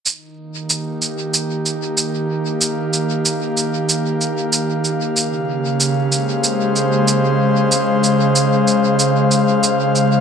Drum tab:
SH |x-xxxxx-|xxxxxxxx|x-xxxxx-|xxxxxxxx|